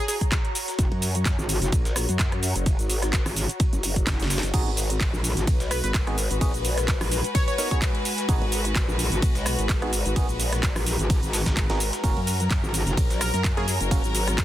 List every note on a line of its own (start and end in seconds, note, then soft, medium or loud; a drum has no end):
0.00 14.45 F#4 medium
0.00 5.93 C#5 medium
0.00 4.54 A#5 medium
0.08 0.17 G#4 medium
0.08 open hi-hat loud
0.08 ride medium
0.08 cabasa medium
0.21 kick medium
0.21 closed hi-hat medium
0.21 ride soft
0.21 cabasa soft
0.32 kick loud
0.32 snare loud
0.32 clap loud
0.32 closed hi-hat medium
0.32 ride medium
0.32 cabasa soft
0.45 closed hi-hat soft
0.55 open hi-hat loud
0.55 ride medium
0.55 cabasa medium
0.68 snare soft
0.68 closed hi-hat medium
0.68 cabasa soft
0.79 0.90 F#1 loud
0.79 kick loud
0.79 closed hi-hat medium
0.79 ride loud
0.79 cabasa soft
0.92 1.36 F#2 medium
0.92 ride soft
1.02 open hi-hat loud
1.02 ride medium
1.02 cabasa medium
1.15 closed hi-hat medium
1.15 cabasa soft
1.25 kick loud
1.25 snare loud
1.25 clap loud
1.25 closed hi-hat medium
1.25 ride medium
1.25 cabasa soft
1.38 1.60 G#1 medium
1.38 cabasa soft
1.49 open hi-hat loud
1.49 ride medium
1.49 cabasa medium
1.62 1.71 F#1 loud
1.62 snare soft
1.62 closed hi-hat medium
1.62 cabasa soft
1.72 2.07 A#1 loud
1.72 kick loud
1.72 closed hi-hat medium
1.72 ride medium
1.72 cabasa soft
1.85 snare medium
1.85 closed hi-hat soft
1.85 cabasa soft
1.96 cross-stick medium
1.96 open hi-hat loud
1.96 ride medium
1.96 cabasa medium
2.09 2.54 F#2 medium
2.09 closed hi-hat medium
2.09 cabasa soft
2.19 kick loud
2.19 snare loud
2.19 clap loud
2.19 closed hi-hat medium
2.19 ride medium
2.19 cabasa soft
2.32 cross-stick medium
2.32 closed hi-hat soft
2.43 open hi-hat loud
2.43 ride medium
2.43 cabasa medium
2.56 2.77 F#1 loud
2.56 closed hi-hat medium
2.56 cabasa soft
2.66 kick loud
2.66 closed hi-hat medium
2.66 ride medium
2.66 cabasa soft
2.79 3.24 G#1 loud
2.79 closed hi-hat soft
2.79 cabasa soft
2.90 open hi-hat loud
2.90 ride medium
2.90 cabasa medium
3.02 cross-stick medium
3.02 snare soft
3.02 closed hi-hat medium
3.02 cabasa soft
3.13 kick loud
3.13 snare loud
3.13 clap loud
3.13 closed hi-hat medium
3.13 ride medium
3.13 cabasa soft
3.26 3.47 G#1 loud
3.26 cross-stick medium
3.26 open hi-hat medium
3.26 cabasa soft
3.36 snare soft
3.36 open hi-hat loud
3.36 ride medium
3.36 cabasa medium
3.49 closed hi-hat medium
3.49 cabasa soft
3.60 kick loud
3.60 closed hi-hat medium
3.60 ride medium
3.60 cabasa soft
3.73 4.05 F#1 medium
3.73 closed hi-hat soft
3.73 cabasa soft
3.83 open hi-hat loud
3.83 ride medium
3.83 cabasa medium
3.96 kick medium
3.96 closed hi-hat medium
3.96 ride soft
3.96 cabasa soft
4.07 4.41 F#1 loud
4.07 kick loud
4.07 snare medium
4.07 snare loud
4.07 clap loud
4.07 closed hi-hat medium
4.07 ride medium
4.07 cabasa soft
4.20 snare medium
4.20 closed hi-hat soft
4.20 cabasa soft
4.30 snare loud
4.30 open hi-hat loud
4.30 ride medium
4.30 cabasa medium
4.38 snare loud
4.43 4.52 F#1 loud
4.43 snare soft
4.43 closed hi-hat medium
4.43 cabasa soft
4.54 4.64 G#1 loud
4.54 12.00 G#3 medium
4.54 4.71 B3 loud
4.54 4.71 D#4 loud
4.54 4.71 F#4 medium
4.54 12.00 F#4 medium
4.54 4.71 G#4 loud
4.54 12.00 B4 medium
4.54 kick loud
4.54 closed hi-hat medium
4.54 ride loud
4.54 ride medium
4.54 crash medium
4.54 cabasa soft
4.66 5.11 G#1 loud
4.66 ride soft
4.77 open hi-hat loud
4.77 ride medium
4.77 cabasa medium
4.90 12.04 B4 medium
4.90 closed hi-hat medium
4.90 cabasa soft
5.00 kick loud
5.00 snare loud
5.00 clap loud
5.00 closed hi-hat medium
5.00 ride medium
5.00 cabasa soft
5.13 5.35 A#1 medium
5.13 cabasa soft
5.24 open hi-hat loud
5.24 ride medium
5.24 cabasa medium
5.37 5.46 G#1 loud
5.37 snare soft
5.37 closed hi-hat medium
5.37 cabasa soft
5.47 5.82 B1 medium
5.47 kick loud
5.47 closed hi-hat medium
5.47 ride medium
5.47 cabasa soft
5.60 snare medium
5.60 closed hi-hat soft
5.60 cabasa soft
5.71 5.79 B4 medium
5.71 cross-stick medium
5.71 open hi-hat loud
5.71 ride medium
5.71 cabasa medium
5.84 6.29 G#1 medium
5.84 5.90 B4 medium
5.84 closed hi-hat medium
5.84 cabasa soft
5.94 kick loud
5.94 snare loud
5.94 clap loud
5.94 closed hi-hat medium
5.94 ride medium
5.94 cabasa soft
6.07 6.16 B3 loud
6.07 6.16 D#4 medium
6.07 6.16 F#4 medium
6.07 6.16 G#4 loud
6.07 cross-stick medium
6.07 closed hi-hat soft
6.18 open hi-hat loud
6.18 ride medium
6.18 cabasa medium
6.28 6.52 G#1 loud
6.28 9.26 G#5 medium
6.28 closed hi-hat medium
6.28 cabasa soft
6.41 6.52 B3 medium
6.41 6.52 D#4 medium
6.41 6.52 F#4 medium
6.41 6.52 G#4 loud
6.41 kick loud
6.41 closed hi-hat medium
6.41 ride loud
6.41 ride medium
6.41 cabasa soft
6.54 6.99 A#1 loud
6.54 closed hi-hat soft
6.54 cabasa soft
6.65 open hi-hat loud
6.65 ride medium
6.65 cabasa medium
6.78 cross-stick medium
6.78 snare soft
6.78 closed hi-hat medium
6.78 cabasa soft
6.88 kick loud
6.88 snare loud
6.88 clap loud
6.88 closed hi-hat medium
6.88 ride medium
6.88 cabasa soft
7.01 7.22 A#1 loud
7.01 cross-stick medium
7.01 open hi-hat medium
7.01 cabasa soft
7.11 snare soft
7.11 open hi-hat loud
7.11 ride medium
7.11 cabasa medium
7.24 closed hi-hat medium
7.24 cabasa soft
7.35 7.43 C#5 medium
7.35 kick loud
7.35 closed hi-hat medium
7.35 ride medium
7.35 cabasa soft
7.48 7.54 C#5 medium
7.48 closed hi-hat soft
7.48 cabasa soft
7.58 7.69 B3 loud
7.58 7.69 D#4 medium
7.58 7.69 F#4 medium
7.58 7.69 A#4 loud
7.58 7.67 C#5 medium
7.58 open hi-hat loud
7.58 ride medium
7.58 cabasa medium
7.71 7.80 B3 medium
7.71 7.80 D#4 medium
7.71 7.80 F#4 medium
7.71 7.80 G#4 loud
7.71 7.78 C#5 medium
7.71 kick medium
7.71 closed hi-hat medium
7.71 ride soft
7.71 cabasa soft
7.82 kick loud
7.82 snare loud
7.82 clap loud
7.82 closed hi-hat medium
7.82 ride medium
7.82 cabasa soft
7.95 closed hi-hat soft
8.05 open hi-hat loud
8.05 ride medium
8.05 cabasa medium
8.18 snare soft
8.18 closed hi-hat medium
8.18 cabasa soft
8.29 8.39 G#1 loud
8.29 8.46 B3 loud
8.29 8.46 D#4 medium
8.29 8.46 F#4 medium
8.29 8.46 G#4 loud
8.29 kick loud
8.29 closed hi-hat medium
8.29 ride medium
8.29 ride loud
8.29 cabasa soft
8.42 8.86 G#1 loud
8.42 ride soft
8.52 open hi-hat loud
8.52 ride medium
8.52 cabasa medium
8.65 closed hi-hat medium
8.65 cabasa soft
8.76 kick loud
8.76 snare loud
8.76 clap loud
8.76 closed hi-hat medium
8.76 ride medium
8.76 ride loud
8.76 cabasa soft
8.88 9.10 A#1 loud
8.88 cabasa soft
8.99 open hi-hat loud
8.99 ride medium
8.99 cabasa medium
9.12 9.21 G#1 loud
9.12 14.45 A#5 medium
9.12 snare soft
9.12 closed hi-hat medium
9.12 cabasa soft
9.22 9.57 B1 medium
9.22 kick loud
9.22 closed hi-hat medium
9.22 ride medium
9.22 cabasa soft
9.35 snare medium
9.35 closed hi-hat soft
9.35 cabasa soft
9.46 cross-stick medium
9.46 open hi-hat loud
9.46 ride medium
9.46 cabasa medium
9.59 10.04 G#1 loud
9.59 closed hi-hat medium
9.59 cabasa soft
9.69 kick loud
9.69 snare loud
9.69 clap loud
9.69 closed hi-hat medium
9.69 ride medium
9.69 cabasa soft
9.82 9.91 B3 loud
9.82 9.91 D#4 medium
9.82 9.91 F#4 medium
9.82 9.91 G#4 loud
9.82 cross-stick medium
9.82 closed hi-hat soft
9.93 open hi-hat loud
9.93 ride medium
9.93 cabasa medium
10.06 10.27 G#1 loud
10.06 closed hi-hat medium
10.06 cabasa soft
10.16 10.27 B3 medium
10.16 10.27 D#4 medium
10.16 10.27 F#4 medium
10.16 10.27 G#4 loud
10.16 kick loud
10.16 closed hi-hat medium
10.16 ride medium
10.16 ride loud
10.16 cabasa soft
10.29 10.74 A#1 loud
10.29 closed hi-hat soft
10.29 cabasa soft
10.40 open hi-hat loud
10.40 ride medium
10.40 cabasa medium
10.53 cross-stick medium
10.53 snare medium
10.53 closed hi-hat medium
10.53 cabasa soft
10.63 kick loud
10.63 snare loud
10.63 clap loud
10.63 closed hi-hat medium
10.63 ride medium
10.63 cabasa soft
10.76 10.97 A#1 medium
10.76 cross-stick medium
10.76 open hi-hat medium
10.76 cabasa soft
10.86 snare soft
10.86 open hi-hat loud
10.86 ride medium
10.86 cabasa medium
10.99 11.21 G#1 loud
10.99 closed hi-hat medium
10.99 cabasa soft
11.10 kick loud
11.10 closed hi-hat medium
11.10 ride medium
11.10 cabasa soft
11.23 11.44 G#1 loud
11.23 closed hi-hat soft
11.23 cabasa soft
11.33 snare loud
11.33 open hi-hat loud
11.33 ride medium
11.33 cabasa medium
11.46 11.68 G#1 medium
11.46 kick medium
11.46 snare loud
11.46 closed hi-hat medium
11.46 ride medium
11.46 cabasa soft
11.57 kick loud
11.57 snare loud
11.57 clap loud
11.57 closed hi-hat medium
11.57 ride medium
11.57 cabasa soft
11.70 11.91 G#1 medium
11.70 11.79 B3 loud
11.70 11.79 D#4 medium
11.70 11.79 F#4 medium
11.70 11.79 G#4 loud
11.70 snare loud
11.70 closed hi-hat soft
11.70 ride medium
11.80 open hi-hat loud
11.80 ride medium
11.80 cabasa medium
11.93 snare soft
11.93 closed hi-hat medium
11.93 cabasa soft
12.04 12.14 F#1 loud
12.04 14.45 F#3 medium
12.04 12.21 A#3 loud
12.04 12.21 C#4 loud
12.04 14.45 C#4 medium
12.04 12.21 F#4 medium
12.04 12.21 A#4 loud
12.04 14.45 A#4 medium
12.04 kick loud
12.04 closed hi-hat medium
12.04 ride medium
12.04 cabasa soft
12.17 12.61 F#2 loud
12.17 ride soft
12.27 open hi-hat loud
12.27 ride medium
12.27 cabasa medium
12.40 closed hi-hat soft
12.40 cabasa soft
12.50 kick loud
12.50 snare loud
12.50 clap loud
12.50 closed hi-hat medium
12.50 ride medium
12.50 cabasa soft
12.63 12.85 G#1 loud
12.63 cabasa soft
12.74 open hi-hat loud
12.74 ride medium
12.74 cabasa medium
12.87 12.96 F#1 loud
12.87 14.45 C#5 medium
12.87 snare soft
12.87 closed hi-hat medium
12.87 cabasa soft
12.97 13.32 A#1 medium
12.97 kick loud
12.97 closed hi-hat medium
12.97 ride medium
12.97 cabasa soft
13.10 snare medium
13.10 closed hi-hat soft
13.10 cabasa soft
13.21 13.29 A#4 medium
13.21 cross-stick medium
13.21 open hi-hat loud
13.21 ride medium
13.21 cabasa medium
13.34 13.79 F#2 medium
13.34 13.40 A#4 medium
13.34 closed hi-hat soft
13.34 cabasa soft
13.44 kick loud
13.44 snare loud
13.44 clap loud
13.44 closed hi-hat medium
13.44 ride medium
13.44 cabasa soft
13.57 13.66 A#3 loud
13.57 13.66 C#4 medium
13.57 13.66 F#4 medium
13.57 13.71 G#4 medium
13.57 13.66 A#4 loud
13.57 cross-stick medium
13.57 closed hi-hat soft
13.68 open hi-hat loud
13.68 ride medium
13.68 cabasa medium
13.81 14.02 F#1 loud
13.81 closed hi-hat medium
13.81 cabasa soft
13.91 14.02 A#3 medium
13.91 14.02 C#4 medium
13.91 14.02 F#4 medium
13.91 14.02 A#4 loud
13.91 kick loud
13.91 closed hi-hat medium
13.91 ride medium
13.91 ride loud
13.91 cabasa soft
14.04 14.45 G#1 loud
14.04 closed hi-hat soft
14.04 cabasa soft
14.15 open hi-hat loud
14.15 ride medium
14.15 cabasa medium
14.27 cross-stick medium
14.27 snare soft
14.27 closed hi-hat medium
14.27 cabasa soft
14.38 kick loud
14.38 snare loud
14.38 clap loud
14.38 closed hi-hat medium
14.38 ride medium
14.38 cabasa soft